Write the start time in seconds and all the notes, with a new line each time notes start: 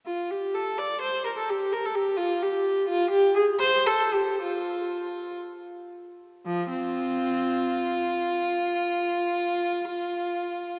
0.06 F4
0.30 G4
0.55 A4
0.78 D5
1.02 C5
1.25 A#4
1.37 A4
1.50 G4
1.73 A#4
1.85 A4
1.95 G4
2.17 F4
2.42 G4
2.88 F4
3.11 G4
3.35 G#4
3.60 C5
3.86 A4
4.13 G4
4.42 F4
6.46 F3
6.70 C4 F4